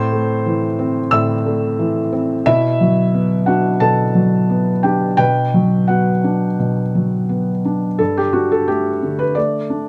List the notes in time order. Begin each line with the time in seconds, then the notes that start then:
Already playing: A2 C4 C5 C6
0.13 A3
0.46 E3
0.79 C4
1.11 A2 E5 E6
1.46 A3
1.79 E3
2.13 C4
2.46 B2 E4 E5
2.81 F#3
3.14 B3
3.46 D4 F#4 F#5
3.80 B2 A4 A5
4.15 F#3
4.50 B3
4.83 D4 G4 G5
5.17 B2 B4 G5
5.54 F#3
5.88 B3 F#4 F#5
6.24 D4
6.59 B2
6.95 F#3
7.29 B3
7.65 D4
7.99 G2 A4
8.17 G4
8.33 D4 F#4
8.52 A4
8.68 A3 G4
9.03 D3
9.19 B4
9.35 A3 D5
9.70 D4